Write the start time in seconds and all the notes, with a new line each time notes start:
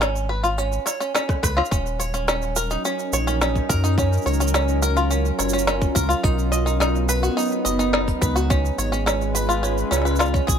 Already playing: G#1
0.01 C#4, snare, shaker
0.16 shaker
0.29 B4
0.44 F4, shaker
0.58 C#4, shaker
0.72 shaker
0.86 C#5, snare, shaker
1.00 C#4, shaker
1.15 C#4, snare, shaker
1.29 kick, cross-stick, shaker
1.43 C#2 B4, kick, cross-stick, shaker
1.57 F4, cross-stick
1.65 shaker
1.71 D#1 F#3 C#4, kick, shaker
1.86 shaker
2.00 C#5, shaker
2.14 C#4, shaker
2.28 C#4, snare, shaker
2.39 C#4, shaker
2.56 A#4, shaker
2.65 D#4
2.71 D#4 A#4, shaker
2.85 C#4, shaker
2.99 shaker
3.13 A#1 C#5, shaker
3.27 C#4, shaker
3.41 C#4, snare, shaker
3.56 kick, shaker
3.69 F#2 A#4, kick, shaker
3.84 D#4, shaker
3.98 C#4, kick, shaker
4.13 shaker
4.17 shaker
4.22 shaker
4.26 C#2 C#5, shaker
4.31 shaker
4.33 shaker
4.36 shaker
4.40 C#4, shaker
4.47 shaker
4.54 C#4, snare, shaker
4.68 shaker
4.82 A#4, shaker
4.97 F4, shaker
5.11 C#4, shaker
5.25 shaker
5.39 F#1 C#5, snare, shaker
5.49 shaker
5.53 C#4, shaker
5.59 shaker
5.67 C#4, snare, shaker
5.82 kick, shaker
5.95 C#2 A#4, kick, shaker
6.09 F4, shaker
6.23 B1 D#4, kick, shaker
6.39 shaker
6.52 D#5, shaker
6.66 B3 D#4, shaker
6.80 D#4, snare, shaker
6.96 shaker
7.09 B4, shaker
7.23 D#4 F#4, shaker
7.37 D#4, shaker
7.40 shaker
7.42 shaker
7.47 shaker
7.49 shaker
7.52 shaker
7.65 F#1 D#5, shaker
7.79 D#4, shaker
7.93 D#4, snare
8.08 kick, shaker
8.21 C#2 B4, kick, shaker
8.36 F#4, shaker
8.49 G#3 C#4, kick, shaker
8.65 shaker
8.78 G#1 C#5, shaker
8.84 F4
8.92 C#4, shaker
8.97 B4
9.06 C#4, snare, shaker
9.21 shaker
9.27 C#4
9.35 B4, shaker
9.49 F4, shaker
9.63 C#4, shaker
9.78 shaker
9.91 C#2 C#4, snare, shaker
9.97 snare
10.02 B4, snare
10.06 snare, shaker
10.11 snare
10.16 F4, snare, shaker
10.20 snare, shaker
10.34 C#4, kick, shaker
10.47 B1 G#4, kick, shaker